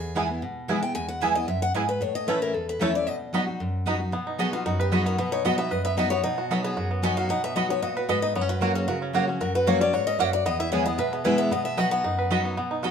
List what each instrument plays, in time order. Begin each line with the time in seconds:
Already playing: steel-string acoustic guitar E2 G#4
0.15 steel-string acoustic guitar E3 G#3 B3 E4, mandolin B3 E4 B4 G#5, five-string banjo B3 E4 G#4
0.29 steel-string acoustic guitar B3 E4
0.42 steel-string acoustic guitar B2
0.68 steel-string acoustic guitar E3 G#3 B3 E4, mandolin B3 E4 B4 G#5, five-string banjo B3 E4 G#4
0.82 steel-string acoustic guitar B3 E4 G5
0.95 steel-string acoustic guitar E2 G#5
1.09 steel-string acoustic guitar F#5
1.21 steel-string acoustic guitar E3 G#3 B3 E4 E5, mandolin B3 E4 B4 G#5, five-string banjo B3 E4 G#4
1.35 steel-string acoustic guitar B3 E4 D#5
1.48 steel-string acoustic guitar F#2 E5
1.62 steel-string acoustic guitar F#5
1.74 steel-string acoustic guitar G#2 D#5, mandolin B3 E4 B4 G#5, five-string banjo B3 E4 G#4
1.89 steel-string acoustic guitar B4
2.01 steel-string acoustic guitar A2 C#5
2.15 steel-string acoustic guitar D#5
2.27 steel-string acoustic guitar E3 A3 C#4 E4 B4, mandolin A3 E4 C#5 A5, five-string banjo C#4 E4 A4
2.42 steel-string acoustic guitar A#4
2.54 steel-string acoustic guitar E2 A4
2.69 steel-string acoustic guitar B4
2.79 steel-string acoustic guitar E3 A3 C#4 E4 C#5, mandolin A3 E4 C#5 A5, five-string banjo C#4 E4 A4
2.94 steel-string acoustic guitar C#4 E4 D5
3.07 steel-string acoustic guitar B2 D#5
3.33 steel-string acoustic guitar F#3 B3 D#4 F#4, mandolin B3 F#4 D#5 B5, five-string banjo B3 D#4 F#4
3.47 steel-string acoustic guitar D#4 F#4
3.60 steel-string acoustic guitar F#2
3.86 steel-string acoustic guitar F#3 B3 D#4 F#4, mandolin B3 F#4 D#5 B5, five-string banjo B3 D#4 F#4
3.99 steel-string acoustic guitar D#4 F#4
4.12 steel-string acoustic guitar B2, five-string banjo B3
4.27 five-string banjo D#4
4.38 steel-string acoustic guitar F#3 B3 D#4 F#4 G#4, mandolin B3 F#4 D#5 B5, five-string banjo F#4
4.53 five-string banjo B3, steel-string acoustic guitar D#4 F4 F#4
4.66 steel-string acoustic guitar F#2 F#4, five-string banjo D#4
4.80 steel-string acoustic guitar G4, five-string banjo B4
4.92 steel-string acoustic guitar F#3 B3 D#4 F#4 G#4, mandolin B3 F#4 D#5 B5, five-string banjo F#4
5.06 five-string banjo B3, steel-string acoustic guitar A#4
5.18 steel-string acoustic guitar B2 B4, five-string banjo B3
5.32 five-string banjo D#4, steel-string acoustic guitar C#5
5.45 steel-string acoustic guitar F#3 B3 D#4 F#4 D#5, mandolin B3 F#4 D#5 B5, five-string banjo F#4
5.58 five-string banjo B3, steel-string acoustic guitar D#4 F#4 E5
5.71 steel-string acoustic guitar F#2 D#5, five-string banjo B4
5.85 five-string banjo B3, steel-string acoustic guitar E5
5.97 steel-string acoustic guitar F#3 B3 D#4 F#4 D#5, mandolin B3 F#4 D#5 B5, five-string banjo D#4
6.10 five-string banjo B3, steel-string acoustic guitar D#4 F#4 C#5
6.23 steel-string acoustic guitar B2 D#5, five-string banjo D#4
6.38 five-string banjo F#4
6.50 steel-string acoustic guitar F#3 B3 D#4 F#4, five-string banjo F#3, mandolin B3 F#4 D#5 B5
6.64 five-string banjo B3, steel-string acoustic guitar G#4
6.77 steel-string acoustic guitar F#2, five-string banjo F#4
6.91 five-string banjo B3
7.02 steel-string acoustic guitar F#3 B3 D#4 F#4 G#5, mandolin B3 F#4 D#5 B5, five-string banjo D#4
7.17 five-string banjo F#4, steel-string acoustic guitar F5
7.29 steel-string acoustic guitar B2 F#5, five-string banjo D#4
7.44 five-string banjo B3, steel-string acoustic guitar E5
7.55 steel-string acoustic guitar F#3 B3 D#4 F#4 D#5, mandolin B3 F#4 D#5 B5, five-string banjo F#4
7.69 five-string banjo B3, steel-string acoustic guitar D#4 F#4 C#5
7.82 steel-string acoustic guitar A#2 D#5, five-string banjo F#4
7.97 steel-string acoustic guitar F#4, five-string banjo B4
8.09 steel-string acoustic guitar G#2 B4, mandolin B3 F#4 D#5 B5, five-string banjo B3
8.22 five-string banjo D#4, steel-string acoustic guitar D#5
8.35 steel-string acoustic guitar F#2 C#5, five-string banjo B3
8.41 five-string banjo C#4
8.49 five-string banjo F#4, steel-string acoustic guitar B4
8.61 steel-string acoustic guitar F#3 A#3 C#4 F#4 A#4, mandolin A#3 F#4 C#5 F#5, five-string banjo F#4
8.75 five-string banjo C#4, steel-string acoustic guitar G#4
8.88 steel-string acoustic guitar C#3 A#4, five-string banjo F#4
9.02 five-string banjo C#4
9.13 steel-string acoustic guitar F#3 A#3 C#4 F#4, mandolin A#3 F#4 C#5 F#5, five-string banjo F#4
9.27 five-string banjo C#4, steel-string acoustic guitar C#4 F#4
9.40 steel-string acoustic guitar F#2 A#4, five-string banjo F#4
9.55 five-string banjo F#4, steel-string acoustic guitar B4
9.67 steel-string acoustic guitar F#3 A#3 C#4 F#4 C#5, five-string banjo F#3, mandolin A#3 F#4 C#5 F#5
9.80 five-string banjo C#4, steel-string acoustic guitar C#4 F#4 D5
9.93 steel-string acoustic guitar G#2 C#5, five-string banjo F#4
10.07 five-string banjo C#4, steel-string acoustic guitar D#5
10.19 steel-string acoustic guitar F#2 E5, mandolin A#3 F#4 C#5 F#5, five-string banjo F#4
10.33 five-string banjo F#4, steel-string acoustic guitar D5
10.46 steel-string acoustic guitar E2 D#5, five-string banjo B3
10.60 five-string banjo E4, steel-string acoustic guitar E5
10.72 steel-string acoustic guitar E3 G#3 B3 E4 C#5, mandolin B3 E4 B4 G#5, five-string banjo G#4
10.85 five-string banjo B3, steel-string acoustic guitar B3 E4 D#5
10.98 steel-string acoustic guitar B2 E5, five-string banjo B4
11.13 five-string banjo B3, steel-string acoustic guitar G#4
11.24 steel-string acoustic guitar E3 G#3 B3 E4 B4, mandolin B3 E4 B4 G#5, five-string banjo E4
11.38 five-string banjo B3, steel-string acoustic guitar E5
11.51 steel-string acoustic guitar B2 D#5, five-string banjo B3
11.65 steel-string acoustic guitar E5
11.77 steel-string acoustic guitar F#3 B3 D#4 F#4 F#5, mandolin B3 F#4 D#5 B5, five-string banjo F#4
11.91 five-string banjo B3, steel-string acoustic guitar F#5
12.04 steel-string acoustic guitar F#2, five-string banjo D#4
12.19 five-string banjo B4
12.30 steel-string acoustic guitar F#3 B3 D#4 F#4, mandolin B3 F#4 D#5 B5, five-string banjo F#4
12.45 five-string banjo B3
12.57 steel-string acoustic guitar B2, five-string banjo B3
12.71 five-string banjo D#4
12.83 steel-string acoustic guitar F#3 B3 D#4 F#4, mandolin B3 F#4 D#5 B5, five-string banjo F#4